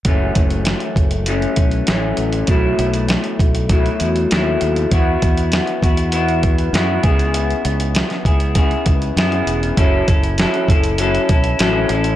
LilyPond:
<<
  \new Staff \with { instrumentName = "Clean electric guitar" } { \time 4/4 \key fis \minor \tempo 4 = 99 <fis, e a cis'>2 <fis, e a cis'>4 <fis, e a cis'>4 | <b, fis a e'>2 <b, fis a e'>4 <b, fis a e'>4 | <e b e' fis'>4. <b e' fis'>8 <e b e' fis'>4 <e b e' fis'>8 <cis b e' gis'>8~ | <cis b e' gis'>4. <b e' gis'>8 <cis b e' gis'>4 <cis b e' gis'>4 |
<fis cis' e' a'>8 <cis' e' a'>8 <fis cis' e' a'>8 <cis' e' a'>8 <fis cis' e' a'>8 <cis' e' a'>8 <fis cis' e' a'>8 <cis' e' a'>8 | }
  \new Staff \with { instrumentName = "Fingered electric bass" } { \clef bass \time 4/4 \key fis \minor fis,,8 fis,,8. r16 fis,,4 b,,8 a,,8 a,,8 | b,,8 b,,8. r16 b,,4 e,8 dis,8 dis,8 | e,8 e,8. r16 e,4. fis,8 cis,8~ | cis,8 cis,8. r16 cis,4 cis,8 fis,8 e,,8 |
fis,,8 fis,,8. r16 fis,,4 b,,8 a,,8 a,,8 | }
  \new DrumStaff \with { instrumentName = "Drums" } \drummode { \time 4/4 <hh bd>8 <hh bd>16 hh16 <hh sn>16 hh16 <hh bd>16 hh16 hh16 hh16 <hh bd>16 hh16 <hh sn>8 hh16 hh16 | <hh bd>8 hh16 hh16 <hh sn>16 hh16 <hh bd>16 hh16 <hh bd>16 hh16 hh16 hh16 <hh sn>8 hh16 hh16 | <hh bd>8 <hh bd>16 hh16 <hh sn>16 hh16 <hh bd>16 hh16 hh16 hh16 <hh bd>16 hh16 <hh sn>8 <hh bd>16 hh16 | hh16 hh16 hh16 hh16 <hh sn>16 <hh sn>16 <hh bd>16 hh16 <hh bd>16 hh16 <hh bd>16 hh16 <hh sn>16 hh16 hh16 hh16 |
<hh bd>8 <hh bd>16 hh16 <hh sn>16 hh16 <hh bd>16 hh16 hh16 hh16 <hh bd>16 hh16 <hh sn>8 hh16 hh16 | }
>>